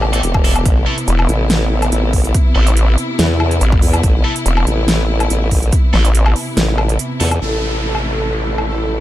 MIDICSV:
0, 0, Header, 1, 8, 480
1, 0, Start_track
1, 0, Key_signature, 0, "minor"
1, 0, Tempo, 422535
1, 744, Time_signature, 4, 2, 24, 8
1, 10226, End_track
2, 0, Start_track
2, 0, Title_t, "Supersaw synth"
2, 0, Program_c, 0, 81
2, 8425, Note_on_c, 0, 69, 100
2, 9054, Note_off_c, 0, 69, 0
2, 9145, Note_on_c, 0, 69, 94
2, 9774, Note_off_c, 0, 69, 0
2, 9865, Note_on_c, 0, 69, 87
2, 10138, Note_off_c, 0, 69, 0
2, 10226, End_track
3, 0, Start_track
3, 0, Title_t, "Distorted electric guitar"
3, 0, Program_c, 1, 30
3, 147, Note_on_c, 1, 69, 104
3, 152, Note_on_c, 1, 64, 82
3, 156, Note_on_c, 1, 57, 82
3, 227, Note_off_c, 1, 57, 0
3, 227, Note_off_c, 1, 69, 0
3, 228, Note_off_c, 1, 64, 0
3, 501, Note_on_c, 1, 69, 97
3, 507, Note_on_c, 1, 64, 68
3, 512, Note_on_c, 1, 57, 77
3, 590, Note_off_c, 1, 57, 0
3, 590, Note_off_c, 1, 64, 0
3, 590, Note_off_c, 1, 69, 0
3, 980, Note_on_c, 1, 69, 89
3, 987, Note_on_c, 1, 64, 71
3, 992, Note_on_c, 1, 57, 79
3, 1069, Note_off_c, 1, 57, 0
3, 1070, Note_off_c, 1, 64, 0
3, 1070, Note_off_c, 1, 69, 0
3, 2900, Note_on_c, 1, 69, 82
3, 2906, Note_on_c, 1, 64, 62
3, 2913, Note_on_c, 1, 57, 68
3, 3039, Note_off_c, 1, 64, 0
3, 3040, Note_off_c, 1, 57, 0
3, 3040, Note_off_c, 1, 69, 0
3, 4821, Note_on_c, 1, 69, 88
3, 4825, Note_on_c, 1, 64, 73
3, 4830, Note_on_c, 1, 57, 76
3, 4909, Note_off_c, 1, 57, 0
3, 4909, Note_off_c, 1, 64, 0
3, 4909, Note_off_c, 1, 69, 0
3, 6740, Note_on_c, 1, 69, 85
3, 6747, Note_on_c, 1, 64, 66
3, 6753, Note_on_c, 1, 57, 63
3, 6880, Note_off_c, 1, 57, 0
3, 6880, Note_off_c, 1, 64, 0
3, 6880, Note_off_c, 1, 69, 0
3, 8181, Note_on_c, 1, 69, 97
3, 8186, Note_on_c, 1, 64, 72
3, 8190, Note_on_c, 1, 57, 78
3, 8270, Note_off_c, 1, 57, 0
3, 8270, Note_off_c, 1, 64, 0
3, 8270, Note_off_c, 1, 69, 0
3, 10226, End_track
4, 0, Start_track
4, 0, Title_t, "String section"
4, 0, Program_c, 2, 48
4, 0, Note_on_c, 2, 48, 84
4, 0, Note_on_c, 2, 59, 76
4, 0, Note_on_c, 2, 67, 89
4, 724, Note_off_c, 2, 67, 0
4, 745, Note_on_c, 2, 64, 90
4, 8378, Note_off_c, 2, 48, 0
4, 8378, Note_off_c, 2, 59, 0
4, 8404, Note_off_c, 2, 64, 0
4, 8425, Note_on_c, 2, 57, 66
4, 8425, Note_on_c, 2, 64, 82
4, 8426, Note_on_c, 2, 48, 70
4, 10226, Note_off_c, 2, 48, 0
4, 10226, Note_off_c, 2, 57, 0
4, 10226, Note_off_c, 2, 64, 0
4, 10226, End_track
5, 0, Start_track
5, 0, Title_t, "Wobble bass"
5, 0, Program_c, 3, 39
5, 0, Note_on_c, 3, 33, 97
5, 246, Note_off_c, 3, 33, 0
5, 264, Note_on_c, 3, 28, 97
5, 726, Note_off_c, 3, 28, 0
5, 744, Note_on_c, 3, 33, 98
5, 966, Note_off_c, 3, 33, 0
5, 1464, Note_on_c, 3, 33, 100
5, 2166, Note_off_c, 3, 33, 0
5, 2182, Note_on_c, 3, 33, 98
5, 2645, Note_off_c, 3, 33, 0
5, 3624, Note_on_c, 3, 40, 95
5, 4086, Note_off_c, 3, 40, 0
5, 4344, Note_on_c, 3, 40, 98
5, 4566, Note_off_c, 3, 40, 0
5, 4583, Note_on_c, 3, 33, 96
5, 4806, Note_off_c, 3, 33, 0
5, 5304, Note_on_c, 3, 33, 99
5, 6006, Note_off_c, 3, 33, 0
5, 6025, Note_on_c, 3, 33, 98
5, 6486, Note_off_c, 3, 33, 0
5, 7464, Note_on_c, 3, 33, 99
5, 7926, Note_off_c, 3, 33, 0
5, 8184, Note_on_c, 3, 40, 103
5, 8406, Note_off_c, 3, 40, 0
5, 8423, Note_on_c, 3, 33, 84
5, 10226, Note_off_c, 3, 33, 0
5, 10226, End_track
6, 0, Start_track
6, 0, Title_t, "Wobble bass"
6, 0, Program_c, 4, 39
6, 1224, Note_on_c, 4, 28, 98
6, 1446, Note_off_c, 4, 28, 0
6, 2904, Note_on_c, 4, 33, 98
6, 3366, Note_off_c, 4, 33, 0
6, 4103, Note_on_c, 4, 33, 101
6, 4326, Note_off_c, 4, 33, 0
6, 5064, Note_on_c, 4, 28, 100
6, 5286, Note_off_c, 4, 28, 0
6, 6744, Note_on_c, 4, 33, 97
6, 7206, Note_off_c, 4, 33, 0
6, 10226, End_track
7, 0, Start_track
7, 0, Title_t, "Downlifter"
7, 0, Program_c, 5, 103
7, 8424, Note_on_c, 5, 60, 63
7, 10226, Note_off_c, 5, 60, 0
7, 10226, End_track
8, 0, Start_track
8, 0, Title_t, "Drums"
8, 25, Note_on_c, 9, 77, 61
8, 138, Note_off_c, 9, 77, 0
8, 151, Note_on_c, 9, 42, 53
8, 264, Note_off_c, 9, 42, 0
8, 265, Note_on_c, 9, 42, 82
8, 378, Note_off_c, 9, 42, 0
8, 391, Note_on_c, 9, 36, 110
8, 392, Note_on_c, 9, 77, 61
8, 504, Note_off_c, 9, 36, 0
8, 505, Note_off_c, 9, 77, 0
8, 505, Note_on_c, 9, 46, 88
8, 619, Note_off_c, 9, 46, 0
8, 631, Note_on_c, 9, 42, 54
8, 631, Note_on_c, 9, 77, 54
8, 744, Note_off_c, 9, 42, 0
8, 744, Note_on_c, 9, 36, 118
8, 744, Note_on_c, 9, 42, 78
8, 745, Note_off_c, 9, 77, 0
8, 858, Note_off_c, 9, 36, 0
8, 858, Note_off_c, 9, 42, 0
8, 1111, Note_on_c, 9, 42, 54
8, 1224, Note_off_c, 9, 42, 0
8, 1224, Note_on_c, 9, 42, 76
8, 1338, Note_off_c, 9, 42, 0
8, 1350, Note_on_c, 9, 77, 64
8, 1464, Note_off_c, 9, 77, 0
8, 1464, Note_on_c, 9, 42, 53
8, 1577, Note_off_c, 9, 42, 0
8, 1703, Note_on_c, 9, 38, 124
8, 1703, Note_on_c, 9, 42, 79
8, 1817, Note_off_c, 9, 38, 0
8, 1817, Note_off_c, 9, 42, 0
8, 2070, Note_on_c, 9, 42, 51
8, 2070, Note_on_c, 9, 77, 53
8, 2183, Note_off_c, 9, 42, 0
8, 2183, Note_on_c, 9, 42, 75
8, 2184, Note_off_c, 9, 77, 0
8, 2297, Note_off_c, 9, 42, 0
8, 2423, Note_on_c, 9, 46, 91
8, 2424, Note_on_c, 9, 36, 63
8, 2537, Note_off_c, 9, 36, 0
8, 2537, Note_off_c, 9, 46, 0
8, 2550, Note_on_c, 9, 42, 52
8, 2663, Note_off_c, 9, 42, 0
8, 2663, Note_on_c, 9, 42, 78
8, 2664, Note_on_c, 9, 36, 119
8, 2777, Note_off_c, 9, 42, 0
8, 2778, Note_off_c, 9, 36, 0
8, 3030, Note_on_c, 9, 42, 51
8, 3143, Note_off_c, 9, 42, 0
8, 3143, Note_on_c, 9, 42, 76
8, 3257, Note_off_c, 9, 42, 0
8, 3383, Note_on_c, 9, 42, 52
8, 3497, Note_off_c, 9, 42, 0
8, 3623, Note_on_c, 9, 38, 119
8, 3623, Note_on_c, 9, 42, 79
8, 3737, Note_off_c, 9, 38, 0
8, 3737, Note_off_c, 9, 42, 0
8, 3863, Note_on_c, 9, 77, 67
8, 3977, Note_off_c, 9, 77, 0
8, 3989, Note_on_c, 9, 42, 51
8, 4103, Note_off_c, 9, 42, 0
8, 4103, Note_on_c, 9, 42, 76
8, 4216, Note_off_c, 9, 42, 0
8, 4230, Note_on_c, 9, 36, 103
8, 4343, Note_on_c, 9, 46, 93
8, 4344, Note_off_c, 9, 36, 0
8, 4456, Note_off_c, 9, 46, 0
8, 4470, Note_on_c, 9, 42, 51
8, 4470, Note_on_c, 9, 77, 55
8, 4583, Note_off_c, 9, 42, 0
8, 4583, Note_on_c, 9, 42, 78
8, 4584, Note_off_c, 9, 77, 0
8, 4584, Note_on_c, 9, 36, 116
8, 4697, Note_off_c, 9, 36, 0
8, 4697, Note_off_c, 9, 42, 0
8, 4950, Note_on_c, 9, 42, 55
8, 5064, Note_off_c, 9, 42, 0
8, 5064, Note_on_c, 9, 42, 80
8, 5178, Note_off_c, 9, 42, 0
8, 5191, Note_on_c, 9, 77, 70
8, 5304, Note_on_c, 9, 42, 53
8, 5305, Note_off_c, 9, 77, 0
8, 5418, Note_off_c, 9, 42, 0
8, 5544, Note_on_c, 9, 38, 116
8, 5544, Note_on_c, 9, 42, 79
8, 5658, Note_off_c, 9, 38, 0
8, 5658, Note_off_c, 9, 42, 0
8, 5910, Note_on_c, 9, 42, 52
8, 5910, Note_on_c, 9, 77, 57
8, 6024, Note_off_c, 9, 42, 0
8, 6024, Note_off_c, 9, 77, 0
8, 6024, Note_on_c, 9, 42, 79
8, 6138, Note_off_c, 9, 42, 0
8, 6264, Note_on_c, 9, 36, 61
8, 6264, Note_on_c, 9, 46, 97
8, 6377, Note_off_c, 9, 46, 0
8, 6378, Note_off_c, 9, 36, 0
8, 6390, Note_on_c, 9, 42, 53
8, 6503, Note_off_c, 9, 42, 0
8, 6503, Note_on_c, 9, 42, 81
8, 6504, Note_on_c, 9, 36, 120
8, 6617, Note_off_c, 9, 42, 0
8, 6618, Note_off_c, 9, 36, 0
8, 6744, Note_on_c, 9, 38, 63
8, 6857, Note_off_c, 9, 38, 0
8, 6870, Note_on_c, 9, 42, 54
8, 6983, Note_off_c, 9, 42, 0
8, 6983, Note_on_c, 9, 42, 82
8, 7097, Note_off_c, 9, 42, 0
8, 7110, Note_on_c, 9, 77, 67
8, 7223, Note_off_c, 9, 77, 0
8, 7223, Note_on_c, 9, 46, 65
8, 7337, Note_off_c, 9, 46, 0
8, 7463, Note_on_c, 9, 38, 121
8, 7463, Note_on_c, 9, 42, 82
8, 7577, Note_off_c, 9, 38, 0
8, 7577, Note_off_c, 9, 42, 0
8, 7703, Note_on_c, 9, 77, 64
8, 7817, Note_off_c, 9, 77, 0
8, 7830, Note_on_c, 9, 42, 54
8, 7943, Note_off_c, 9, 42, 0
8, 7943, Note_on_c, 9, 42, 85
8, 8057, Note_off_c, 9, 42, 0
8, 8183, Note_on_c, 9, 46, 99
8, 8296, Note_off_c, 9, 46, 0
8, 8309, Note_on_c, 9, 42, 55
8, 8309, Note_on_c, 9, 77, 58
8, 8423, Note_off_c, 9, 42, 0
8, 8423, Note_off_c, 9, 77, 0
8, 9030, Note_on_c, 9, 77, 54
8, 9143, Note_off_c, 9, 77, 0
8, 9750, Note_on_c, 9, 77, 47
8, 9863, Note_off_c, 9, 77, 0
8, 10226, End_track
0, 0, End_of_file